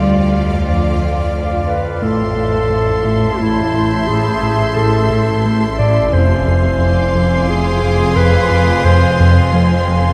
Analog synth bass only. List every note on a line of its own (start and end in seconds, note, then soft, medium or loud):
2.02 2.23 A2 medium
2.36 2.57 A2 soft
2.70 2.91 A2 soft
3.05 3.25 A2 medium
3.39 3.60 A3 soft
3.73 3.94 A2 soft
4.09 4.29 A2 medium
4.42 4.63 A2 soft
4.77 4.97 A2 soft
5.10 5.30 A2 medium
5.45 5.65 A3 soft
5.79 5.99 A2 soft
6.13 6.33 F2 medium
6.48 6.68 F2 soft
6.79 7.00 F2 soft
7.15 7.35 F2 medium
7.47 7.68 F3 soft
7.83 8.03 F2 soft
8.16 8.37 F2 medium
8.50 8.71 F2 medium
8.85 9.05 F2 medium
9.20 9.40 F2 medium
9.53 9.74 F3 medium
9.88 10.08 F2 soft